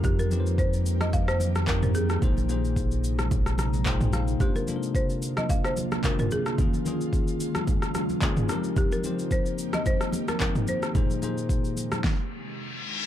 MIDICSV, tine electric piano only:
0, 0, Header, 1, 2, 480
1, 0, Start_track
1, 0, Tempo, 545455
1, 34, Time_signature, 4, 2, 24, 8
1, 11495, End_track
2, 0, Start_track
2, 0, Title_t, "Tine electric piano"
2, 0, Program_c, 0, 4
2, 0, Control_c, 0, 64, 127
2, 0, Note_on_c, 0, 53, 94
2, 0, Note_on_c, 0, 60, 88
2, 0, Note_on_c, 0, 63, 88
2, 0, Note_on_c, 0, 67, 88
2, 0, Note_on_c, 0, 70, 103
2, 185, Note_off_c, 0, 53, 0
2, 188, Note_off_c, 0, 60, 0
2, 191, Note_off_c, 0, 63, 0
2, 194, Note_off_c, 0, 67, 0
2, 197, Note_off_c, 0, 70, 0
2, 270, Note_on_c, 0, 53, 66
2, 275, Note_on_c, 0, 60, 63
2, 281, Note_on_c, 0, 63, 62
2, 287, Note_on_c, 0, 67, 63
2, 293, Note_on_c, 0, 71, 61
2, 347, Note_off_c, 0, 71, 0
2, 351, Note_on_c, 0, 72, 76
2, 1045, Note_off_c, 0, 53, 0
2, 1048, Note_off_c, 0, 60, 0
2, 1050, Note_off_c, 0, 63, 0
2, 1053, Note_off_c, 0, 67, 0
2, 1085, Note_off_c, 0, 72, 0
2, 1469, Note_on_c, 0, 53, 67
2, 1475, Note_on_c, 0, 60, 62
2, 1481, Note_on_c, 0, 63, 61
2, 1486, Note_on_c, 0, 67, 64
2, 1493, Note_on_c, 0, 70, 75
2, 1865, Note_off_c, 0, 53, 0
2, 1868, Note_off_c, 0, 60, 0
2, 1871, Note_off_c, 0, 63, 0
2, 1874, Note_off_c, 0, 67, 0
2, 1877, Note_off_c, 0, 70, 0
2, 1948, Note_on_c, 0, 46, 71
2, 1954, Note_on_c, 0, 58, 68
2, 1961, Note_on_c, 0, 63, 70
2, 1964, Control_c, 0, 64, 0
2, 1967, Note_on_c, 0, 68, 67
2, 1972, Note_on_c, 0, 72, 81
2, 2095, Control_c, 0, 64, 127
2, 2148, Note_off_c, 0, 46, 0
2, 2151, Note_off_c, 0, 58, 0
2, 2154, Note_off_c, 0, 63, 0
2, 2157, Note_off_c, 0, 68, 0
2, 2160, Note_off_c, 0, 72, 0
2, 2190, Note_on_c, 0, 46, 70
2, 2196, Note_on_c, 0, 58, 63
2, 2202, Note_on_c, 0, 63, 65
2, 2207, Note_on_c, 0, 68, 62
2, 2213, Note_on_c, 0, 72, 72
2, 2965, Note_off_c, 0, 46, 0
2, 2968, Note_off_c, 0, 58, 0
2, 2971, Note_off_c, 0, 63, 0
2, 2973, Note_off_c, 0, 68, 0
2, 2977, Note_off_c, 0, 72, 0
2, 3161, Note_on_c, 0, 82, 68
2, 3381, Note_off_c, 0, 82, 0
2, 3391, Note_on_c, 0, 46, 81
2, 3397, Note_on_c, 0, 58, 69
2, 3402, Note_on_c, 0, 63, 70
2, 3402, Note_on_c, 0, 79, 71
2, 3408, Note_on_c, 0, 68, 69
2, 3414, Note_on_c, 0, 72, 87
2, 3622, Note_off_c, 0, 79, 0
2, 3640, Note_on_c, 0, 77, 71
2, 3786, Note_off_c, 0, 46, 0
2, 3789, Note_off_c, 0, 58, 0
2, 3792, Note_off_c, 0, 63, 0
2, 3795, Note_off_c, 0, 68, 0
2, 3798, Note_off_c, 0, 72, 0
2, 3860, Note_off_c, 0, 77, 0
2, 3869, Note_on_c, 0, 48, 73
2, 3875, Note_on_c, 0, 58, 66
2, 3880, Note_on_c, 0, 62, 68
2, 3886, Control_c, 0, 64, 0
2, 3886, Note_on_c, 0, 65, 66
2, 3892, Note_on_c, 0, 72, 85
2, 4019, Control_c, 0, 64, 127
2, 4068, Note_off_c, 0, 48, 0
2, 4071, Note_off_c, 0, 58, 0
2, 4074, Note_off_c, 0, 62, 0
2, 4077, Note_off_c, 0, 65, 0
2, 4080, Note_off_c, 0, 72, 0
2, 4109, Note_on_c, 0, 48, 67
2, 4115, Note_on_c, 0, 58, 63
2, 4121, Note_on_c, 0, 62, 61
2, 4127, Note_on_c, 0, 65, 61
2, 4133, Note_on_c, 0, 69, 61
2, 4187, Note_off_c, 0, 69, 0
2, 4189, Note_on_c, 0, 70, 76
2, 4885, Note_off_c, 0, 48, 0
2, 4888, Note_off_c, 0, 58, 0
2, 4890, Note_off_c, 0, 62, 0
2, 4893, Note_off_c, 0, 65, 0
2, 4925, Note_off_c, 0, 70, 0
2, 5309, Note_on_c, 0, 48, 67
2, 5315, Note_on_c, 0, 58, 61
2, 5320, Note_on_c, 0, 62, 60
2, 5326, Note_on_c, 0, 65, 61
2, 5332, Note_on_c, 0, 66, 59
2, 5386, Note_off_c, 0, 66, 0
2, 5390, Note_on_c, 0, 67, 76
2, 5705, Note_off_c, 0, 48, 0
2, 5708, Note_off_c, 0, 58, 0
2, 5711, Note_off_c, 0, 62, 0
2, 5714, Note_off_c, 0, 65, 0
2, 5746, Note_off_c, 0, 67, 0
2, 5789, Note_on_c, 0, 51, 74
2, 5795, Note_on_c, 0, 58, 66
2, 5801, Note_on_c, 0, 61, 65
2, 5805, Control_c, 0, 64, 0
2, 5807, Note_on_c, 0, 65, 65
2, 5813, Note_on_c, 0, 68, 81
2, 5970, Control_c, 0, 64, 127
2, 5989, Note_off_c, 0, 51, 0
2, 5991, Note_off_c, 0, 58, 0
2, 5994, Note_off_c, 0, 61, 0
2, 5997, Note_off_c, 0, 65, 0
2, 6000, Note_off_c, 0, 68, 0
2, 6028, Note_on_c, 0, 51, 71
2, 6035, Note_on_c, 0, 58, 65
2, 6040, Note_on_c, 0, 61, 65
2, 6046, Note_on_c, 0, 65, 64
2, 6051, Note_on_c, 0, 68, 80
2, 6804, Note_off_c, 0, 51, 0
2, 6807, Note_off_c, 0, 58, 0
2, 6810, Note_off_c, 0, 61, 0
2, 6813, Note_off_c, 0, 65, 0
2, 6816, Note_off_c, 0, 68, 0
2, 7230, Note_on_c, 0, 51, 80
2, 7236, Note_on_c, 0, 58, 70
2, 7241, Note_on_c, 0, 61, 77
2, 7247, Note_on_c, 0, 65, 74
2, 7254, Note_on_c, 0, 68, 94
2, 7470, Note_on_c, 0, 53, 97
2, 7472, Note_off_c, 0, 51, 0
2, 7475, Note_off_c, 0, 58, 0
2, 7475, Note_on_c, 0, 60, 92
2, 7478, Note_off_c, 0, 61, 0
2, 7481, Note_off_c, 0, 65, 0
2, 7482, Note_on_c, 0, 63, 88
2, 7484, Note_off_c, 0, 68, 0
2, 7487, Control_c, 0, 64, 0
2, 7487, Note_on_c, 0, 67, 87
2, 7494, Note_on_c, 0, 70, 104
2, 7628, Control_c, 0, 64, 127
2, 7866, Note_off_c, 0, 53, 0
2, 7868, Note_off_c, 0, 60, 0
2, 7872, Note_off_c, 0, 63, 0
2, 7874, Note_off_c, 0, 67, 0
2, 7878, Note_off_c, 0, 70, 0
2, 7949, Note_on_c, 0, 53, 69
2, 7956, Note_on_c, 0, 60, 64
2, 7961, Note_on_c, 0, 63, 65
2, 7967, Note_on_c, 0, 67, 65
2, 7973, Note_on_c, 0, 72, 76
2, 8725, Note_off_c, 0, 53, 0
2, 8728, Note_off_c, 0, 60, 0
2, 8731, Note_off_c, 0, 63, 0
2, 8733, Note_off_c, 0, 67, 0
2, 8736, Note_off_c, 0, 72, 0
2, 9150, Note_on_c, 0, 53, 70
2, 9156, Note_on_c, 0, 60, 64
2, 9162, Note_on_c, 0, 63, 63
2, 9168, Note_on_c, 0, 67, 62
2, 9173, Note_on_c, 0, 70, 74
2, 9546, Note_off_c, 0, 53, 0
2, 9549, Note_off_c, 0, 60, 0
2, 9552, Note_off_c, 0, 63, 0
2, 9555, Note_off_c, 0, 67, 0
2, 9557, Note_off_c, 0, 70, 0
2, 9629, Note_on_c, 0, 46, 76
2, 9636, Note_on_c, 0, 58, 67
2, 9641, Note_on_c, 0, 63, 72
2, 9644, Control_c, 0, 64, 0
2, 9647, Note_on_c, 0, 68, 70
2, 9652, Note_on_c, 0, 72, 85
2, 9778, Control_c, 0, 64, 127
2, 9829, Note_off_c, 0, 46, 0
2, 9832, Note_off_c, 0, 58, 0
2, 9835, Note_off_c, 0, 63, 0
2, 9837, Note_off_c, 0, 68, 0
2, 9840, Note_off_c, 0, 72, 0
2, 9869, Note_on_c, 0, 46, 67
2, 9874, Note_on_c, 0, 58, 63
2, 9880, Note_on_c, 0, 63, 62
2, 9886, Note_on_c, 0, 68, 65
2, 9892, Note_on_c, 0, 72, 78
2, 10592, Note_off_c, 0, 46, 0
2, 10594, Note_off_c, 0, 58, 0
2, 10597, Note_off_c, 0, 63, 0
2, 10600, Note_off_c, 0, 68, 0
2, 10603, Note_off_c, 0, 72, 0
2, 10604, Control_c, 0, 64, 0
2, 11495, End_track
0, 0, End_of_file